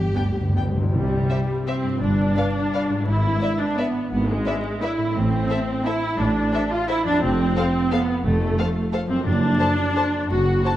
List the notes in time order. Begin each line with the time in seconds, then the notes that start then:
Already playing: E2 G2 B3 D4 G4
0.06 G2
0.15 D2 G2 B3 D4 G5
0.23 G2
0.32 G2
0.41 G2
0.49 G2
0.55 G2 B3 D4 G5
0.66 G2
0.75 G2 C3
0.80 G2 C4
0.84 E4
0.88 G4
0.93 C2 C3 G3
1.29 G4 C5 E5
1.67 C4 G4 C5 E5
1.83 G2
1.88 D4
1.92 F4
1.97 G1 B4
2.01 G2 D4
2.37 B4 D5 F5
2.74 B4 D5 F5
2.89 G#2
2.94 D4
2.99 E4
3.03 G#2 E4 B4
3.07 G#1
3.41 B4 D5 E5
3.59 D4
3.77 B3 B4 D5 E5
4.11 G#1 G#2 B3
4.28 G#3
4.45 B4 D5 E5
4.81 E4 B4 D5 E5
4.98 A2
5.02 C4
5.06 E4
5.11 A4
5.15 A1 A2 C4
5.49 A4 C5 E5
5.84 E4 A4 C5 E5
6.18 A1 A2 D4
6.52 A4 C5 E5
6.70 F4
6.88 E4 A4 C5 E5
7.04 F2 D4
7.09 C4
7.13 F4
7.18 C4 A4
7.22 F1 F2
7.56 A4 C5 F5
7.91 B3 A4 C5 F5
8.24 F1 F2 A3
8.58 A4 C5 F5
8.93 A4 C5 F5
9.07 F#2 C4
9.11 C4
9.16 D4
9.21 A4
9.25 F#1 F#2 D4
9.60 A4 C5 A5
9.95 A4 C5 A5
10.30 F#1 F#2 F#4
10.64 A4 C5 A5